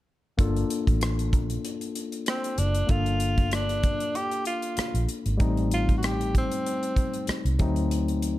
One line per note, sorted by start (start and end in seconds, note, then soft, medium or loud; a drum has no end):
0.38 0.62 G1 medium
0.38 2.85 A#3 medium
0.38 2.85 D4 medium
0.38 2.86 F4 medium
0.38 2.86 A4 medium
0.38 kick loud
0.38 closed hi-hat medium
0.56 closed hi-hat soft
0.70 closed hi-hat medium
0.87 1.33 A1 medium
0.87 kick medium
0.87 closed hi-hat soft
1.01 cross-stick loud
1.01 closed hi-hat medium
1.19 closed hi-hat soft
1.33 1.56 A#1 medium
1.33 kick medium
1.33 closed hi-hat medium
1.50 closed hi-hat medium
1.65 closed hi-hat medium
1.81 closed hi-hat soft
1.96 closed hi-hat medium
2.12 closed hi-hat soft
2.26 2.60 C4 medium
2.26 cross-stick loud
2.26 closed hi-hat medium
2.44 closed hi-hat soft
2.58 2.82 F#1 medium
2.58 2.92 D4 medium
2.58 closed hi-hat medium
2.75 closed hi-hat soft
2.87 3.96 G1 medium
2.87 5.35 A#3 medium
2.87 5.35 D4 soft
2.87 5.36 F4 soft
2.87 3.55 F4 medium
2.87 5.37 A4 medium
2.87 kick medium
2.87 closed hi-hat medium
3.06 closed hi-hat soft
3.20 closed hi-hat medium
3.38 kick medium
3.38 closed hi-hat soft
3.51 4.18 D4 medium
3.51 cross-stick medium
3.51 closed hi-hat medium
3.69 closed hi-hat soft
3.83 kick medium
3.83 closed hi-hat medium
4.00 closed hi-hat soft
4.15 4.46 G4 medium
4.15 closed hi-hat medium
4.32 closed hi-hat soft
4.45 5.05 F4 medium
4.45 closed hi-hat medium
4.62 closed hi-hat soft
4.77 muted fingered electric bass stroke soft
4.77 cross-stick medium
4.77 closed hi-hat medium
4.94 5.05 A#1 medium
4.94 closed hi-hat soft
5.09 closed hi-hat medium
5.26 5.37 G#1 medium
5.26 closed hi-hat soft
5.37 6.47 A1 medium
5.37 7.54 G3 medium
5.37 7.55 A3 medium
5.37 7.56 C4 medium
5.37 7.56 D#4 medium
5.37 kick medium
5.37 closed hi-hat medium
5.57 closed hi-hat soft
5.71 5.96 F4 medium
5.71 closed hi-hat medium
5.89 kick medium
5.89 closed hi-hat soft
5.97 6.07 F#4 medium
6.03 6.36 G4 medium
6.03 cross-stick medium
6.03 closed hi-hat medium
6.21 closed hi-hat soft
6.35 7.58 C4 medium
6.35 kick medium
6.35 closed hi-hat medium
6.52 closed hi-hat soft
6.67 closed hi-hat medium
6.83 closed hi-hat soft
6.96 kick medium
6.96 closed hi-hat medium
7.14 closed hi-hat soft
7.27 muted fingered electric bass stroke soft
7.27 cross-stick medium
7.27 closed hi-hat medium
7.45 7.56 C2 medium
7.45 closed hi-hat soft
7.59 8.39 D2 medium
7.59 8.39 F#3 medium
7.59 8.39 A3 medium
7.59 8.39 C4 medium
7.59 8.39 D#4 medium
7.59 kick medium
7.59 closed hi-hat medium
7.76 closed hi-hat soft
7.91 closed hi-hat medium
8.08 closed hi-hat soft
8.22 closed hi-hat medium